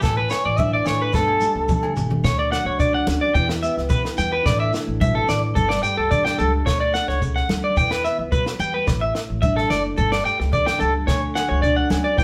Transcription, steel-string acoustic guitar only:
0.04 A2
0.31 E3
0.59 D4
0.87 A3
1.14 G2 G3 A3 D4
1.41 G3
1.70 D4
1.96 A3
2.25 D3
2.51 F#3
2.79 D4
3.07 C#4
3.35 E3 E4 G4, muted steel-string acoustic guitar stroke
3.63 B3
3.91 G4
4.18 E4
4.45 A2 E3 A3 D4 A4
4.73 E3
5.01 B2
5.28 A2
5.55 G2
5.84 G3
6.13 D4
6.40 A3
6.67 D3
7.22 C#3
7.51 D3
7.77 E3
8.06 B3
8.33 F#3
8.59 G3
8.88 A2
9.16 muted steel-string acoustic guitar stroke
9.45 D4
9.73 A3
9.99 G2
10.26 G3
10.56 D4
10.83 A3
11.09 D3
11.36 F#3
11.65 D4
11.92 C#4
12.17 E3 B3 E4 G4

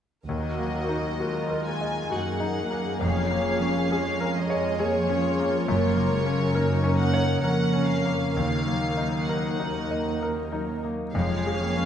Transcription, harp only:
0.28 D#3
0.59 F#3
0.90 D#4
1.21 A#4
1.50 F#4
1.81 A#4
2.11 D#4
2.42 F#3
2.72 D#4
3.02 F2
3.31 F3
3.60 G#3
3.91 C#4
4.20 A#4
4.50 C#4
4.79 G#3
5.08 F3
5.37 G#3
5.96 C#3
6.26 A#3
6.55 C#4
6.85 A#4
7.14 C#4
7.75 C#3
8.35 D#3
8.66 F#3
8.97 D#4
9.29 A#4
9.58 F#4
9.90 A#4
10.21 D#4
10.52 F#3
10.83 D#4
11.15 F2
11.46 F3
11.77 G#3

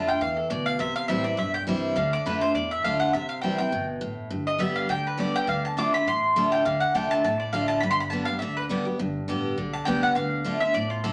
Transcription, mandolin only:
0.08 G5
0.21 F5
0.37 A4
0.50 D5
0.66 F5
0.80 E5
0.96 F5
1.08 E5
1.24 D5
1.39 E5
1.54 G5
1.96 F5
2.13 D5
2.26 B4
2.41 C5
2.55 D5
2.71 E5
2.84 F5
3.00 F#5
3.13 E5
3.29 F5
3.42 G5
3.58 G5
4.47 D#5
4.60 E5
4.76 F5
4.90 G5
5.07 B4
5.20 D5
5.36 G5
5.49 F5
5.65 A5
5.79 D6
5.94 B5
6.08 C6
6.52 G5
6.65 F5
6.80 F#5
6.95 G5
7.11 A5
7.25 A5
7.40 D5
7.53 F5
7.68 A5
7.80 B5
7.91 C6
8.00 B5
8.10 A5
8.25 F5
8.39 E5
8.57 B4
9.73 A5
9.85 G5
10.03 F#5
10.15 F5
10.60 E5
10.74 D5
10.90 F4
11.04 A4

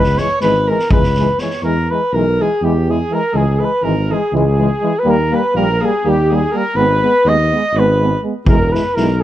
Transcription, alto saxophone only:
Already playing: B4
0.19 C#5
0.43 B4
0.68 A#4
0.92 B4
1.40 C#5
1.65 A#4
1.91 B4
2.13 A#4
2.42 G#4
2.65 G4
2.90 G#4
3.13 A#4
3.33 G#4
3.60 B4
3.84 A#4
4.12 G#4
4.36 G#4
5.00 B4
5.09 A#4
5.33 B4
5.56 A#4
5.81 G#4
6.05 G4
6.30 G#4
6.52 A#4
6.76 B4
7.27 D#5
7.77 B4
8.48 A#4
8.76 B4
8.97 A#4

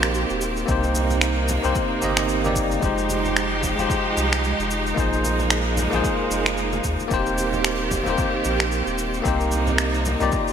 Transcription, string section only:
Already playing: D#3 C4 G4
0.68 C3 A#3 D#4
2.83 F3 G#3 G4
4.96 G#3 A#3
7.11 D#3 C4 G4
9.24 C3 A#3 D#4
10.32 D#3 F4 G4

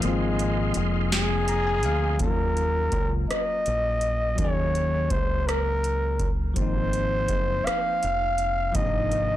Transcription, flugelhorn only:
0.04 G#3
1.13 G#4
2.21 A#4
3.30 D#5
4.38 C#5
5.11 C5
5.47 A#4
6.56 C5
7.65 F5
8.75 D#5

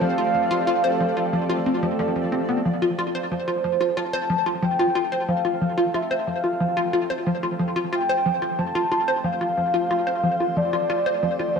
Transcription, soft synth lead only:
0.01 F5
3.31 C5
3.97 A5
4.63 G5
5.29 F5
5.95 E5
6.28 F5
7.93 G5
8.59 A5
9.25 F5
10.57 D5
11.56 C5

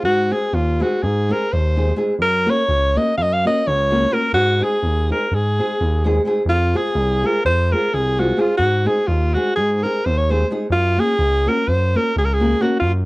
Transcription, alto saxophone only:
0.05 F#4
0.32 G#4
0.54 F4
0.82 F#4
1.03 G#4
1.32 A#4
1.53 C5
2.22 A#4
2.50 C#5
2.97 D#5
3.17 F5
3.22 D#5
3.33 F5
3.47 D#5
3.67 C#5
4.13 A#4
4.34 F#4
4.63 G#4
5.11 A#4
5.34 G#4
6.49 F4
6.77 G#4
7.26 A#4
7.45 C5
7.72 A#4
7.94 G#4
8.19 F#4
8.40 F4
8.57 F#4
8.87 G#4
9.07 F4
9.33 F#4
9.55 G#4
9.83 A#4
10.05 C5
10.17 C#5
10.30 C5
10.72 F4
11.00 G#4
11.48 A#4
11.68 C5
11.96 A#4
12.18 G#4
12.25 A#4
12.33 G#4
12.61 F#4
12.79 F4

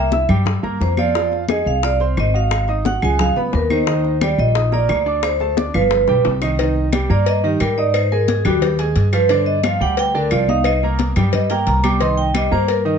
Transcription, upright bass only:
Already playing: C2
0.29 G2
0.63 G2
0.81 F2
1.66 C2
2.18 G#1
3.03 C#2
3.37 C#2
3.54 D#2
4.38 A#1
4.90 D2
5.75 G1
6.08 B1
6.25 C2
7.10 G2
7.61 G#2
8.45 D#2
8.96 G2
9.81 D2
10.32 C2
11.16 G2
11.67 C2
12.52 G2

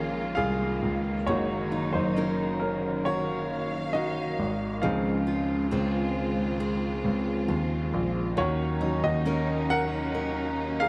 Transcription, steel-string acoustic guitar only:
Already playing: A#3 C#4 F4 G#4
0.37 F4
1.27 F#3
1.72 D#4
2.16 C#4 D#4 A#4
3.06 A#4
3.94 D#4
4.83 C#3
5.27 F4
5.71 C4 F4 G#4
6.60 G#4
7.48 F4
8.37 D#3
8.81 D#4
9.26 C#4 D#4 A#4
10.14 A#4

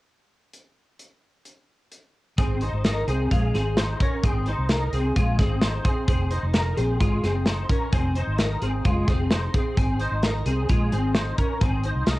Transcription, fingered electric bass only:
2.38 G#1
2.72 G#1
3.07 C2
3.31 A#1
3.54 G#1
4.23 G#1
4.58 C2
4.92 C2
5.16 A#1
5.39 G#1
6.08 F1
6.43 F1
6.78 A#1
7.01 G#1
7.24 F#1
7.93 F1
8.27 G#1
8.62 G#1
8.85 F#1
9.08 F1
9.77 G#1
10.12 G#1
10.46 C2
10.69 A#1
10.92 G#1
11.61 G#1
11.96 C2
12.07 C2

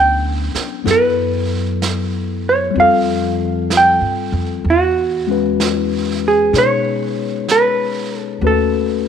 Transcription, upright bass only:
Already playing: D2
0.54 muted upright bass stroke
0.85 F#2
2.75 F2
4.01 G2
4.32 F2
4.64 E2
6.53 B2
8.41 D#2

